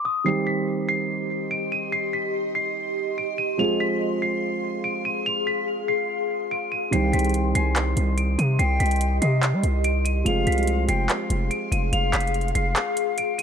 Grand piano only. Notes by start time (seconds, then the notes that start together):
0.24 D#3 G3 C4 D#4 G4
3.58 F3 G#3 C4 F4 G#4
6.91 D#3 G3 C4 D#4 G4
10.24 F3 G#3 C4 F4 G#4